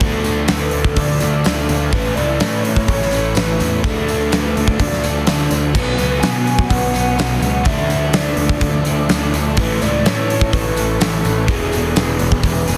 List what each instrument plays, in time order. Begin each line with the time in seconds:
0.00 picked electric bass D2, overdriven electric guitar D3 F3 A3 D4, twelve-string acoustic guitar G#4, ambient pad A4 E5 F5 D6, soft synth lead A4, kick, open hi-hat, tambourine
0.24 overdriven electric guitar A3 D4, twelve-string acoustic guitar A4, open hi-hat, tambourine
0.30 overdriven electric guitar F3
0.47 picked electric bass D2, overdriven electric guitar D3 F3 A3, twelve-string acoustic guitar B4, snare, open hi-hat, tambourine
0.51 overdriven electric guitar D4
0.71 picked electric bass D2, twelve-string acoustic guitar C#5, open hi-hat, tambourine
0.84 kick
0.96 picked electric bass D2, overdriven electric guitar D3 F3 A3 D4, twelve-string acoustic guitar A4, soft synth lead D5, kick, open hi-hat
1.20 picked electric bass D2, overdriven electric guitar F3 A3 D4, twelve-string acoustic guitar A4, open hi-hat, tambourine
1.44 picked electric bass D2, overdriven electric guitar D3 F3 A3, twelve-string acoustic guitar C#5, snare, open hi-hat, tambourine
1.48 overdriven electric guitar D4
1.68 picked electric bass D2, overdriven electric guitar F3 A3 D4, twelve-string acoustic guitar C#5, open hi-hat, tambourine
1.91 picked electric bass A1, overdriven electric guitar A2 E3 A3 C#4, twelve-string acoustic guitar G#4, ambient pad A4 E5 B5 C#6, soft synth lead B4, kick, open hi-hat, tambourine
1.96 overdriven electric guitar E4
2.15 picked electric bass C#2, overdriven electric guitar C#4 E4, twelve-string acoustic guitar A4, soft synth lead D5, open hi-hat, tambourine
2.19 overdriven electric guitar A3
2.40 picked electric bass A2, overdriven electric guitar E3 A3 C#4 E4, twelve-string acoustic guitar B4, snare, open hi-hat, tambourine
2.63 soft synth lead C#5, twelve-string acoustic guitar C#5, open hi-hat, tambourine
2.76 kick
2.87 picked electric bass A1, overdriven electric guitar A2 E3 A3 C#4 E4, twelve-string acoustic guitar A4, kick, open hi-hat
3.02 snare
3.11 overdriven electric guitar C#4 E4, twelve-string acoustic guitar A4, open hi-hat, tambourine
3.15 overdriven electric guitar A3
3.34 picked electric bass A1, overdriven electric guitar A2 E3 A3 C#4 E4, soft synth lead B4, twelve-string acoustic guitar C#5, snare, open hi-hat, tambourine
3.59 picked electric bass E2, overdriven electric guitar A3 C#4 E4, twelve-string acoustic guitar C#5, open hi-hat, tambourine
3.82 picked electric bass D2, overdriven electric guitar D3 F3 A3 D4, twelve-string acoustic guitar G#4, soft synth lead A4, ambient pad F5 D6, kick, open hi-hat, tambourine
4.06 overdriven electric guitar F3 A3 D4, twelve-string acoustic guitar A4, open hi-hat, tambourine
4.30 picked electric bass D2, overdriven electric guitar D3 F3 A3 D4, twelve-string acoustic guitar B4, snare, open hi-hat, tambourine
4.55 picked electric bass D2, twelve-string acoustic guitar C#5, open hi-hat, tambourine
4.68 kick
4.77 picked electric bass D2, overdriven electric guitar D3 F3 A3 D4, twelve-string acoustic guitar A4, soft synth lead D5, kick, open hi-hat, tambourine
4.93 snare
5.03 picked electric bass D2, overdriven electric guitar F3 A3 D4, twelve-string acoustic guitar A4, open hi-hat, tambourine
5.26 picked electric bass D2, overdriven electric guitar D3 F3 A3 D4, twelve-string acoustic guitar C#5, snare, open hi-hat, tambourine
5.50 picked electric bass D2, overdriven electric guitar F3 A3 D4, twelve-string acoustic guitar C#5, open hi-hat, tambourine
5.73 picked electric bass B1, overdriven electric guitar B2 F#3 B3, twelve-string acoustic guitar G#4, soft synth lead B4, ambient pad B4 C#5 F#5 C#6, kick, crash, tambourine
5.77 overdriven electric guitar C#4
5.98 picked electric bass C#2, overdriven electric guitar F#3 B3 C#4, twelve-string acoustic guitar A4, open hi-hat, tambourine
6.19 overdriven electric guitar B2 F#3 B3, picked electric bass B2, twelve-string acoustic guitar B4, soft synth lead G#5, open hi-hat, tambourine
6.23 overdriven electric guitar C#4, snare
6.46 twelve-string acoustic guitar C#5, open hi-hat, tambourine
6.59 kick
6.68 picked electric bass B1, overdriven electric guitar B2 F#3 B3 C#4, twelve-string acoustic guitar B4, soft synth lead F#5, kick, open hi-hat
6.92 overdriven electric guitar F#3 B3 C#4, twelve-string acoustic guitar B4, open hi-hat, tambourine
7.15 picked electric bass B1, overdriven electric guitar B2 F#3 B3, twelve-string acoustic guitar C#5, tambourine
7.19 overdriven electric guitar C#4, snare, open hi-hat
7.39 picked electric bass C#2, overdriven electric guitar F#3 B3 C#4, twelve-string acoustic guitar C#5, soft synth lead F#5, open hi-hat, tambourine
7.63 picked electric bass D2, overdriven electric guitar D3 F3 A3 D4, ambient pad F4 A4 E5 D6, twelve-string acoustic guitar G#4, soft synth lead E5, kick, open hi-hat, tambourine
7.68 overdriven electric guitar F3
7.87 overdriven electric guitar F3 A3 D4, twelve-string acoustic guitar A4, open hi-hat, tambourine
7.91 overdriven electric guitar D4
8.11 picked electric bass D2, overdriven electric guitar D3 F3 A3 D4, twelve-string acoustic guitar B4, snare, open hi-hat, tambourine
8.15 soft synth lead D5
8.37 picked electric bass D2, twelve-string acoustic guitar C#5, open hi-hat, tambourine
8.49 kick
8.60 picked electric bass D2, overdriven electric guitar D3 F3 A3 D4, twelve-string acoustic guitar A4, kick, open hi-hat
8.84 picked electric bass D2, overdriven electric guitar F3 A3 D4, twelve-string acoustic guitar A4, open hi-hat, tambourine
9.08 picked electric bass D2, overdriven electric guitar D3 F3 A3 D4, twelve-string acoustic guitar C#5, snare, open hi-hat, tambourine
9.31 picked electric bass D2, overdriven electric guitar A3 D4, twelve-string acoustic guitar C#5, open hi-hat, tambourine
9.35 overdriven electric guitar F3
9.56 picked electric bass A1, overdriven electric guitar A2 E3 A3 C#4 E4, twelve-string acoustic guitar G#4, ambient pad B4 A5 C#6, soft synth lead B4, kick, open hi-hat, tambourine
9.80 picked electric bass C#2, overdriven electric guitar A3 C#4 E4, twelve-string acoustic guitar A4, soft synth lead D5, open hi-hat, tambourine
10.04 picked electric bass A2, overdriven electric guitar E3 A3 C#4 E4, twelve-string acoustic guitar B4, soft synth lead C#5, snare, open hi-hat, tambourine
10.29 twelve-string acoustic guitar C#5, open hi-hat, tambourine
10.41 kick
10.52 picked electric bass A1, overdriven electric guitar A2 E3 A3 C#4 E4, twelve-string acoustic guitar A4, soft synth lead B4, kick, open hi-hat
10.76 overdriven electric guitar A3 C#4 E4, twelve-string acoustic guitar A4, open hi-hat, tambourine
10.99 picked electric bass A1, overdriven electric guitar A2 E3 A3 E4, soft synth lead A4, twelve-string acoustic guitar C#5, snare, open hi-hat, tambourine
11.04 overdriven electric guitar C#4 E4
11.24 picked electric bass A1, overdriven electric guitar A3 C#4 E4, twelve-string acoustic guitar C#5, open hi-hat, tambourine
11.47 picked electric bass E1, overdriven electric guitar E2 B2 E3 B3 D4, twelve-string acoustic guitar G#4, soft synth lead G#4, ambient pad E5 G#5 D6, kick, open hi-hat, tambourine
11.51 overdriven electric guitar G#4
11.71 overdriven electric guitar B3 D4 G#4, twelve-string acoustic guitar A4, open hi-hat, tambourine
11.96 picked electric bass E1, overdriven electric guitar E3 B3 D4, twelve-string acoustic guitar B4, snare, open hi-hat, tambourine
12.00 overdriven electric guitar G#4
12.19 picked electric bass E1, twelve-string acoustic guitar C#5, open hi-hat, tambourine
12.32 kick
12.42 picked electric bass E1, overdriven electric guitar E3 B3 D4 G#4, twelve-string acoustic guitar B4, kick, open hi-hat, tambourine
12.67 picked electric bass E1, overdriven electric guitar B3 D4 G#4, twelve-string acoustic guitar B4, open hi-hat, tambourine